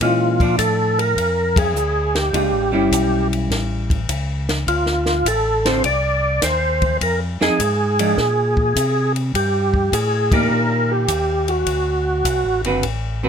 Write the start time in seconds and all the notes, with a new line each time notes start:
0.01 A#2 E3 G#3 C#4 F4, kick, ride
0.40 F3 D4, kick, ride
0.58 A2 A4, kick, hi-hat pedal, ride
0.99 A#4, ride
1.16 F2, kick, ride
1.56 G#4, kick, ride
1.74 D2, hi-hat pedal
2.15 G4, snare, ride
2.33 C#2 G#3 D4 F4, kick, ride
2.52 A1
2.72 G1 G3 C#4 E4
2.92 B1, kick, hi-hat pedal, ride
3.33 ride
3.50 A1, kick, snare, ride
3.90 kick, ride
4.09 C#2, kick, hi-hat pedal, ride
4.49 snare, ride
4.67 D2 F4, kick, ride
4.86 snare
5.06 snare
5.25 A1 A4, kick, hi-hat pedal, ride
5.65 D3 C4 F4 A4 C5, snare, ride
5.84 C2 D5, kick, ride
6.42 D#2 C5, kick, snare, hi-hat pedal, ride
6.82 kick, ride
7.01 F2 A#4, kick, ride
7.41 F2 F3 C4 D#4 G#4, snare
7.59 G#2, kick, hi-hat pedal, ride
7.99 F3 G#3 D4, ride
8.17 A#2, kick, snare
8.57 kick
8.76 C3, kick, hi-hat pedal, ride
9.16 ride
9.34 G2 G4, kick, ride
9.74 kick
9.92 A2 G#4, kick, hi-hat pedal, ride
10.32 D#3 A#3 D4 G4 A#4, kick, ride
10.50 A#2
10.91 G4
11.08 D#2, kick, hi-hat pedal, ride
11.48 F#4, ride
11.66 D2, kick, ride
12.24 C2, kick, hi-hat pedal, ride
12.45 A1
12.63 F#1 D3 C4 F#4 B4, ride
12.83 A1, kick, ride
13.23 D3 C4 F#4 B4